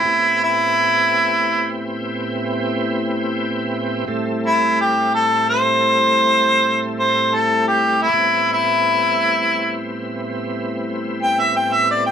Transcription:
X:1
M:12/8
L:1/16
Q:3/8=59
K:Am
V:1 name="Harmonica"
E2 E8 z12 z2 | z2 E2 G2 A2 c8- c c2 A2 G2 E- | E2 E8 z8 g e g e d g |]
V:2 name="Tonewheel organ"
[A,,B,CEG]24 | [A,,G,A,CE]24 | [A,,G,B,CE]24 |]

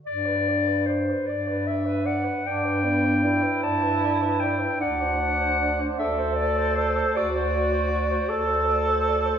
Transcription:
X:1
M:12/8
L:1/16
Q:3/8=51
K:G
V:1 name="Clarinet"
d4 c2 d2 e2 f2 g6 a4 g2 | f6 e2 d2 c2 d8- d2 z2 |]
V:2 name="Alto saxophone"
d B d B d B d B d B d B d B d B d B d B d B d B | d c d c d c d c d c d c d c d c d c d c d c d c |]
V:3 name="Tenor saxophone"
z12 D2 B,2 E8 | D6 A6 F6 A6 |]
V:4 name="Bass clarinet" clef=bass
G,,6 G,,6 G,,6 G,,6 | D,,6 D,,6 D,,6 D,,6 |]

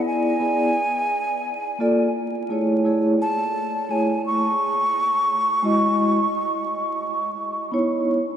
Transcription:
X:1
M:4/4
L:1/8
Q:"Swing 16ths" 1/4=86
K:E
V:1 name="Flute"
g6 z2 | z a2 g c'4- | c'6 z2 |]
V:2 name="Vibraphone"
[B,EG=d] [B,EGd] z3 [^A,^E=Ad] z [=A,=EGc] | [A,EGc] z2 [A,EGc] z4 | [G,EFd] z4 z [B,DEc] z |]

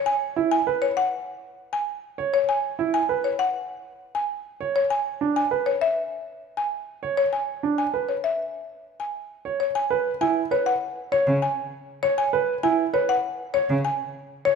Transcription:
X:1
M:4/4
L:1/16
Q:1/4=99
K:Emix
V:1 name="Marimba"
g z2 g z c f z4 g z3 c | g z2 g z c f z4 g z3 c | g z2 g z c e z4 g z3 c | g z2 g z c e z4 g z3 c |
[K:E] g z2 g z c f z2 c z g z3 c | g z2 g z c f z2 c z g z3 c |]
V:2 name="Grand piano"
z2 E z B z8 z c z | z2 E z B z8 z c z | z2 D z B z8 z c z | z2 D z B z8 z c z |
[K:E] z B z E z B z3 c z4 z c | z B z E z B z3 c z4 z c |]
V:3 name="Cello" clef=bass
z16 | z16 | z16 | z16 |
[K:E] z8 z2 C, z4 z | z8 z2 C, z4 z |]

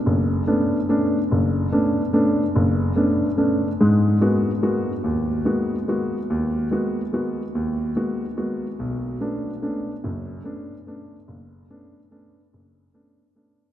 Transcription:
X:1
M:3/4
L:1/8
Q:"Swing" 1/4=144
K:Blyd
V:1 name="Grand piano"
F,,,2 [=A,B,C=D] z [A,B,CD] z | F,,,2 [=A,B,C=D] z [A,B,CD] z | F,,,2 [=A,B,C=D] z [A,B,CD] z | [G,,G,]2 [G,A,B,F] z [G,A,B,F] z |
D,,2 [G,A,B,F] z [G,A,B,F] z | D,,2 [G,A,B,F] z [G,A,B,F] z | D,,2 [G,A,B,F] z [G,A,B,F] z | B,,,2 [=A,B,C=D] z [A,B,CD] z |
[F,,,F,,]2 [=A,B,C=D] z [A,B,CD] z | F,,,2 [=A,B,C=D] z [A,B,CD] z | F,,,2 [=A,B,C=D] z [A,B,CD] z |]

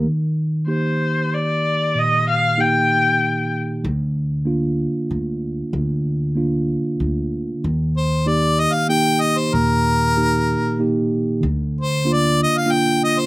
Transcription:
X:1
M:3/4
L:1/16
Q:1/4=95
K:Eb
V:1 name="Harmonica"
z12 | z12 | z12 | z12 |
z2 c2 d2 e f g2 e c | B8 z4 | z2 c2 d2 e f g2 e c |]
V:2 name="Viola"
z4 c4 d4 | e2 f2 g6 z2 | z12 | z12 |
z12 | z12 | z12 |]
V:3 name="Tine electric piano"
E,4 [B,EG]8 | B,,4 [B,EG]8 | D,4 [B,DF]8 | D,4 [B,DF]8 |
E,4 [B,EG]4 [B,EG]4 | B,,4 [B,EG]4 [B,EG]4 | D,4 [B,DF]4 [B,DF]4 |]
V:4 name="Upright bass" clef=bass
z12 | z12 | D,,8 D,,4 | D,,8 D,,4 |
E,,8 z4 | E,,8 z4 | D,,8 z4 |]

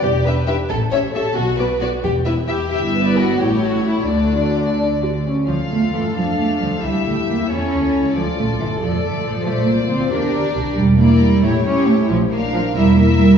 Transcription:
X:1
M:6/8
L:1/16
Q:3/8=90
K:D
V:1 name="Violin section"
z2 e2 e2 z2 e2 e2 | z2 d2 d2 z2 e2 e2 | e3 d3 c6 | d8- d2 z2 |
[K:Dm] f6 f6 | e6 ^c6 | d6 d6 | d6 d6 |
z2 d4 ^c2 c4 | z2 f4 e2 e4 |]
V:2 name="Violin section"
G2 B2 G2 A2 c2 A2 | F2 B2 F2 G2 B2 G2 | G2 B2 F2 G2 F2 E2 | D6 z6 |
[K:Dm] A12 | G6 A6 | A12 | c6 B6 |
z2 B4 G2 G4 | z2 B4 B2 B4 |]
V:3 name="Viola section"
z2 [DB]2 [DB]2 z2 [CG]2 [CG]2 | z2 [B,F]2 [B,F]2 z2 [B,E]2 [B,E]2 | [B,E]6 [A,E]6 | [A,F]6 D2 F2 C2 |
[K:Dm] F6 D6 | E12 | F6 A6 | F6 G6 |
z2 E4 E2 E4 | z2 D4 E2 E4 |]
V:4 name="Cello section" clef=bass
E,,6 A,,6 | B,,6 E,,6 | G,,6 A,,6 | D,8- D,2 z2 |
[K:Dm] F,2 A,2 E,2 F,2 A,2 F,2 | G,2 A,2 B,2 ^C6 | F,2 A,2 E,2 F,2 A,2 F,2 | A,2 B,2 C2 D6 |
G,2 B,2 G,2 A,2 ^C2 A,2 | F,2 B,2 F,2 G,2 B,2 G,2 |]
V:5 name="Double bass section" clef=bass
E,,,6 A,,,6 | B,,,6 E,,,6 | G,,,6 A,,,6 | D,,8- D,,2 z2 |
[K:Dm] D,,2 E,,2 G,,2 F,,2 E,,2 D,,2 | ^C,,2 D,,2 F,,2 E,,2 D,,2 C,,2 | D,,2 B,,,2 G,,,2 F,,,2 G,,,2 A,,,2 | B,,,2 C,,2 D,,2 E,,2 D,,2 C,,2 |
E,,,6 A,,,6 | B,,,6 E,,,6 |]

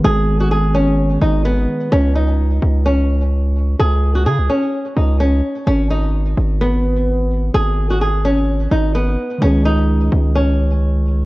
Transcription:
X:1
M:4/4
L:1/16
Q:1/4=128
K:G#phr
V:1 name="Nylon-string guitar"
G3 F G2 C4 D2 B,4 | C2 D6 C8 | G3 F G2 C4 D2 C4 | C2 D6 B,8 |
G3 F G2 C4 D2 B,4 | C2 D6 C8 |]
V:2 name="Tine electric piano"
[D,G,B,G]16 | z16 | z16 | z16 |
z16 | [D,G,CG]16 |]
V:3 name="808-style bass" clef=bass
G,,,8- G,,,2 G,,,4 z2 | C,,6 C,,8- C,,2 | C,,4 C, C,, z4 C,,4 z2 | G,,,6 G,,,8- G,,,2 |
G,,,8- G,,,2 G,,,4 z2 | C,,6 C,,8- C,,2 |]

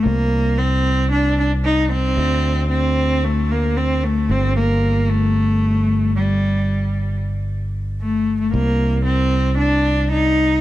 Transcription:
X:1
M:4/4
L:1/16
Q:1/4=113
K:Cdor
V:1 name="Cello"
B,4 C4 D2 D2 E2 C2- | C4 C4 A,2 B,2 C2 A,2 | C2 B,4 A,8 G,2- | G,6 z6 A,3 A, |
B,4 C4 D4 E4 |]
V:2 name="Fingered electric bass" clef=bass
C,,16 | D,,16 | G,,,16- | G,,,16 |
C,,16 |]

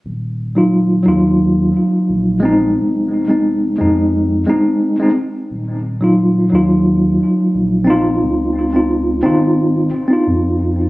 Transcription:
X:1
M:4/4
L:1/16
Q:"Swing 16ths" 1/4=88
K:Ebdor
V:1 name="Tine electric piano"
z3 [G,EF]3 [G,EF]8 [A,CE]2- | [A,CE]3 [A,CE]3 [A,CE]4 [A,CE]3 [A,CE] z2 | z3 [G,EF]3 [G,EF]8 [CEF]2- | [CEF]3 [CEF]3 [CEF]4 z [CEF]4- [CEF] |]
V:2 name="Sub bass" clef=bass
E,,,6 E,,4 z2 B,,,4 | F,,,6 F,,4 z6 | E,,,6 E,,4 z2 B,,,4 | D,,6 A,,,4 z2 F,,4 |]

